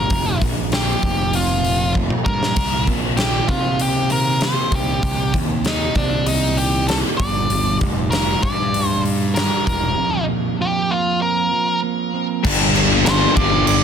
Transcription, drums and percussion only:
0.10 kick, open hi-hat
0.42 kick, open hi-hat
0.72 snare, open hi-hat
1.03 kick, open hi-hat
1.33 open hi-hat
1.64 open hi-hat
1.95 kick
2.10 mid tom
2.26 kick
2.43 snare
2.56 kick, open hi-hat, crash
2.87 kick, open hi-hat
3.17 snare, open hi-hat
3.48 kick, open hi-hat
3.80 open hi-hat
4.10 open hi-hat
4.41 snare, open hi-hat
4.72 kick, open hi-hat
5.03 kick, open hi-hat
5.34 kick, open hi-hat
5.65 snare, open hi-hat
5.95 kick, open hi-hat
6.26 open hi-hat
6.58 open hi-hat
6.89 snare, open hi-hat
7.20 kick, open hi-hat
7.50 open hi-hat
7.81 kick, open hi-hat
8.12 snare, open hi-hat
8.43 kick, open hi-hat
8.74 open hi-hat
9.05 open hi-hat
9.36 snare, open hi-hat
9.67 kick, open hi-hat
12.45 kick, crash
12.75 crash
13.06 snare, crash
13.37 kick, crash
13.67 crash

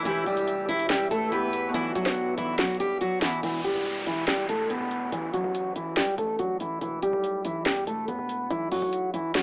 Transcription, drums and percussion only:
0.05 closed hi-hat
0.26 closed hi-hat
0.37 closed hi-hat
0.48 closed hi-hat
0.69 closed hi-hat
0.79 closed hi-hat
0.90 finger snap, snare, closed hi-hat
1.11 closed hi-hat
1.32 closed hi-hat
1.53 closed hi-hat
1.74 closed hi-hat
1.95 closed hi-hat
2.06 cross-stick, snare
2.38 closed hi-hat
2.59 finger snap, snare, closed hi-hat
2.64 closed hi-hat
2.69 closed hi-hat
2.75 closed hi-hat
2.80 closed hi-hat
3.01 closed hi-hat
3.22 finger snap, snare, closed hi-hat, open hi-hat
3.33 closed hi-hat
3.43 closed hi-hat
3.64 closed hi-hat
3.86 closed hi-hat
4.07 closed hi-hat
4.28 finger snap, snare, closed hi-hat
4.49 closed hi-hat
4.70 closed hi-hat
4.91 closed hi-hat
5.12 closed hi-hat
5.33 closed hi-hat
5.55 closed hi-hat
5.76 closed hi-hat
5.97 finger snap, snare, closed hi-hat
6.18 closed hi-hat
6.39 closed hi-hat
6.60 closed hi-hat
6.81 closed hi-hat
7.02 closed hi-hat
7.24 closed hi-hat
7.45 closed hi-hat
7.66 finger snap, snare, closed hi-hat
7.87 closed hi-hat
8.08 closed hi-hat
8.29 closed hi-hat
8.50 closed hi-hat
8.72 open hi-hat
8.93 closed hi-hat
9.14 closed hi-hat
9.35 finger snap, snare, closed hi-hat

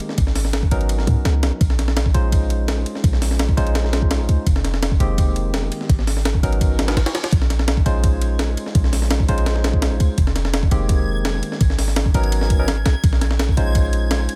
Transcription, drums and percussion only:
0.09 snare
0.18 kick, ride
0.27 snare
0.36 snare, open hi-hat
0.45 snare
0.53 snare, ride
0.63 kick
0.71 ride
0.81 ride
0.89 ride
0.99 snare
1.07 kick, ride
1.25 snare, ride
1.43 snare, ride
1.61 kick, ride
1.70 snare
1.79 snare, ride
1.88 snare
1.97 snare, ride
2.06 kick
2.14 ride
2.32 kick, ride
2.50 ride
2.68 snare, ride
2.86 ride
2.95 snare
3.04 kick, ride
3.13 snare
3.22 snare, open hi-hat
3.31 snare
3.39 snare, ride
3.49 kick
3.57 ride
3.67 ride
3.75 snare, ride
3.85 snare
3.93 snare, ride
4.02 kick
4.11 snare, ride
4.29 ride
4.47 kick, ride
4.56 snare
4.65 snare, ride
4.74 snare
4.83 snare, ride
4.92 kick
5.00 ride
5.18 kick, ride
5.36 ride
5.54 snare, ride
5.72 ride
5.81 snare
5.89 kick, ride
5.99 snare
6.07 snare, open hi-hat
6.17 snare
6.25 snare, ride
6.34 kick
6.43 ride
6.53 ride
6.61 kick, ride
6.79 snare, ride
6.88 snare, ride
6.97 snare, ride
7.06 snare, ride
7.15 snare, ride
7.24 snare, ride
7.32 kick, ride
7.42 snare
7.50 snare, ride
7.59 snare
7.68 snare, ride
7.77 kick
7.86 ride
8.04 kick, ride
8.21 ride
8.39 snare, ride
8.57 ride
8.66 snare
8.75 kick, ride
8.84 snare
8.93 snare, open hi-hat
9.02 snare
9.11 snare, ride
9.20 kick
9.28 ride
9.38 ride
9.46 snare, ride
9.56 snare
9.64 snare, ride
9.73 kick
9.82 snare, ride
10.00 ride
10.18 kick, ride
10.27 snare
10.36 snare, ride
10.45 snare
10.54 snare, ride
10.63 kick
10.71 ride
10.89 kick, ride
11.25 snare, ride
11.43 ride
11.52 snare
11.61 kick, ride
11.70 snare
11.79 snare, open hi-hat
11.88 snare
11.96 snare, ride
12.06 kick
12.14 ride
12.24 ride
12.32 ride
12.41 snare
12.50 kick, ride
12.68 snare, ride
12.86 snare, ride
13.04 kick, ride
13.13 snare
13.21 snare, ride
13.31 snare
13.39 snare, ride
13.49 kick
13.57 ride
13.75 kick, ride
13.93 ride
14.11 snare, ride
14.29 ride

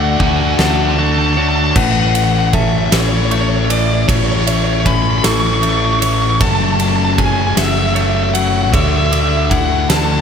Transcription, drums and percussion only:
0.20 kick
0.59 snare
1.76 kick, crash
2.15 ride
2.53 kick, ride
2.92 snare, ride
3.31 ride
3.70 ride
4.09 kick, ride
4.47 ride
4.86 kick, ride
5.24 snare, ride
5.63 ride
6.02 ride
6.41 kick, ride
6.80 ride
7.18 kick, ride
7.57 snare, ride
7.96 ride
8.35 ride
8.74 kick, ride
9.13 ride
9.51 kick, ride
9.90 snare, ride

